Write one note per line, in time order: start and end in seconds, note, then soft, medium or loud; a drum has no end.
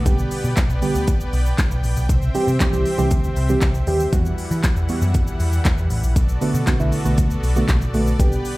0.00 2.06 B3 medium
0.05 0.24 B1 loud
0.05 0.52 D3 medium
0.05 0.52 G3 medium
0.05 0.53 B3 medium
0.05 0.53 G4 loud
0.05 2.07 B4 medium
0.05 2.07 D5 medium
0.05 4.09 G5 medium
0.05 kick loud
0.05 closed hi-hat medium
0.05 shaker medium
0.18 shaker soft
0.31 open hi-hat medium
0.31 shaker medium
0.44 0.53 B2 medium
0.44 shaker medium
0.57 kick loud
0.57 snare medium
0.57 clap loud
0.57 closed hi-hat medium
0.57 shaker medium
0.69 0.78 B1 medium
0.69 shaker medium
0.82 1.44 D3 medium
0.82 1.44 G3 medium
0.82 1.44 B3 medium
0.82 1.44 G4 loud
0.82 open hi-hat medium
0.82 shaker medium
0.95 1.13 D2 medium
0.95 shaker medium
1.07 kick loud
1.07 closed hi-hat medium
1.07 shaker medium
1.20 shaker medium
1.33 1.51 B1 loud
1.33 open hi-hat medium
1.33 shaker medium
1.46 shaker medium
1.58 kick loud
1.58 snare medium
1.58 clap loud
1.58 closed hi-hat medium
1.58 shaker medium
1.71 1.80 B1 loud
1.71 shaker soft
1.84 1.93 A#1 medium
1.84 open hi-hat medium
1.84 shaker medium
1.97 2.06 B1 medium
1.97 shaker medium
2.09 2.27 C2 loud
2.09 4.11 C4 medium
2.09 4.11 C5 medium
2.09 4.11 E5 medium
2.09 kick loud
2.09 closed hi-hat medium
2.09 shaker medium
2.22 shaker medium
2.34 2.50 E3 loud
2.34 2.50 G3 medium
2.34 2.50 C4 medium
2.34 2.50 G4 loud
2.34 open hi-hat medium
2.34 shaker medium
2.48 2.57 C3 loud
2.48 shaker medium
2.60 2.68 E3 loud
2.60 2.68 G3 medium
2.60 2.68 C4 medium
2.60 2.68 G4 loud
2.60 kick loud
2.60 snare medium
2.60 clap loud
2.60 closed hi-hat medium
2.60 shaker medium
2.72 2.82 C2 medium
2.72 2.88 E3 loud
2.72 2.88 G3 medium
2.72 2.88 C4 medium
2.72 2.88 G4 loud
2.72 shaker medium
2.86 open hi-hat medium
2.86 shaker medium
2.98 3.07 C2 medium
2.98 3.29 E3 loud
2.98 3.29 G3 medium
2.98 3.29 C4 medium
2.98 3.29 G4 loud
2.98 shaker medium
3.11 3.29 D2 loud
3.11 kick loud
3.11 closed hi-hat medium
3.11 shaker medium
3.24 shaker medium
3.36 3.54 C2 medium
3.36 open hi-hat medium
3.36 shaker medium
3.49 3.72 E3 medium
3.49 3.72 G3 medium
3.49 3.73 C4 medium
3.49 3.73 G4 medium
3.49 shaker medium
3.61 3.80 C2 loud
3.61 kick loud
3.61 snare medium
3.61 clap loud
3.61 closed hi-hat medium
3.61 shaker medium
3.74 shaker soft
3.87 4.05 D#2 loud
3.87 4.03 E3 loud
3.87 4.03 G3 medium
3.87 4.03 C4 medium
3.87 4.03 G4 loud
3.87 open hi-hat medium
3.87 shaker medium
4.00 shaker medium
4.12 4.30 E2 loud
4.12 4.59 E3 medium
4.12 6.14 E3 medium
4.12 6.14 G3 medium
4.12 4.59 G3 medium
4.12 4.59 B3 medium
4.12 6.14 E4 medium
4.12 4.59 F#4 loud
4.12 6.14 F#5 medium
4.12 kick loud
4.12 closed hi-hat medium
4.12 shaker medium
4.25 shaker medium
4.38 open hi-hat medium
4.38 shaker medium
4.51 4.60 E3 loud
4.51 shaker medium
4.64 kick loud
4.64 snare medium
4.64 clap loud
4.64 closed hi-hat medium
4.64 shaker medium
4.76 4.85 E2 medium
4.76 shaker medium
4.89 5.51 E3 medium
4.89 5.51 G3 medium
4.89 5.51 B3 medium
4.89 5.51 F#4 medium
4.89 open hi-hat medium
4.89 shaker medium
5.02 5.20 F#2 medium
5.02 shaker medium
5.14 kick loud
5.14 closed hi-hat medium
5.14 shaker medium
5.27 shaker medium
5.40 5.58 E2 medium
5.40 open hi-hat medium
5.40 shaker medium
5.53 shaker medium
5.65 kick loud
5.65 snare medium
5.65 clap loud
5.65 closed hi-hat medium
5.65 shaker medium
5.78 5.87 E2 medium
5.78 shaker soft
5.90 5.99 A1 loud
5.90 open hi-hat medium
5.90 shaker medium
6.03 6.12 A#1 medium
6.03 shaker medium
6.16 6.34 B1 loud
6.16 8.17 B3 medium
6.16 8.17 F#4 medium
6.16 8.17 A4 medium
6.16 8.57 D5 loud
6.16 kick loud
6.16 closed hi-hat medium
6.16 shaker medium
6.29 shaker medium
6.41 6.57 D3 loud
6.41 6.57 A3 medium
6.41 6.57 B3 medium
6.41 6.57 F#4 loud
6.41 open hi-hat medium
6.41 shaker medium
6.54 6.63 B2 loud
6.54 shaker medium
6.67 6.75 D3 loud
6.67 6.75 A3 medium
6.67 6.75 B3 medium
6.67 6.75 F#4 loud
6.67 kick loud
6.67 snare loud
6.67 clap loud
6.67 closed hi-hat medium
6.67 shaker medium
6.79 6.88 B1 medium
6.79 6.95 D3 loud
6.79 6.95 A3 medium
6.79 6.95 B3 medium
6.79 6.95 E4 loud
6.79 shaker medium
6.92 open hi-hat medium
6.92 shaker medium
7.05 7.14 B1 medium
7.05 7.36 D3 loud
7.05 7.36 A3 medium
7.05 7.36 B3 medium
7.05 7.36 F#4 loud
7.05 shaker medium
7.18 7.36 D2 loud
7.18 kick loud
7.18 closed hi-hat medium
7.18 shaker medium
7.31 shaker medium
7.43 7.61 B1 loud
7.43 open hi-hat medium
7.43 shaker medium
7.56 7.79 D3 medium
7.56 7.79 A3 medium
7.56 7.79 B3 medium
7.56 7.79 F#4 medium
7.56 shaker medium
7.69 7.87 B1 loud
7.69 kick loud
7.69 snare medium
7.69 clap loud
7.69 closed hi-hat medium
7.69 shaker medium
7.81 shaker soft
7.94 8.12 A#1 loud
7.94 8.10 D3 loud
7.94 8.10 A3 loud
7.94 8.10 B3 medium
7.94 8.10 F#4 loud
7.94 open hi-hat medium
7.94 shaker medium
8.07 shaker medium
8.19 8.37 B1 loud
8.19 8.57 D3 medium
8.19 8.57 G3 medium
8.19 8.57 B3 medium
8.19 8.57 G4 loud
8.19 8.57 B4 medium
8.19 8.57 G5 medium
8.19 kick loud
8.19 closed hi-hat medium
8.19 shaker medium
8.32 shaker medium
8.45 open hi-hat medium
8.45 shaker medium